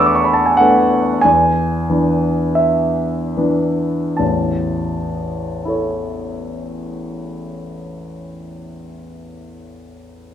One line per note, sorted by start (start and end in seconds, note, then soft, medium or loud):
0.00 1.25 E2 medium
0.00 0.56 A3 medium
0.00 0.56 B3 soft
0.00 0.57 D4 soft
0.00 1.27 E5 medium
0.00 0.57 F#5 medium
0.00 0.46 G#5 medium
0.00 0.33 A5 medium
0.00 0.24 B5 medium
0.00 0.15 C#6 medium
0.00 0.06 D6 medium
0.00 1.27 E6 medium
0.06 0.16 D6 medium
0.15 0.26 C#6 medium
0.24 0.36 B5 medium
0.33 0.47 A5 medium
0.46 0.59 G#5 medium
0.57 1.19 A3 soft
0.57 1.20 B3 soft
0.57 1.20 D4 soft
0.57 1.22 F#5 medium
1.21 1.88 E2 medium
1.21 2.57 G#5 medium
1.90 3.34 E3 soft
1.90 3.34 B3 soft
1.90 3.34 D4 soft
2.55 4.18 E5 medium
3.37 4.15 E3 soft
3.37 4.15 B3 soft
3.37 4.16 D4 soft
4.17 7.76 A1 soft
4.17 7.76 E2 soft
4.17 7.73 A5 medium
5.65 9.22 E4 soft
5.65 9.24 A4 soft
5.69 9.26 C#5 soft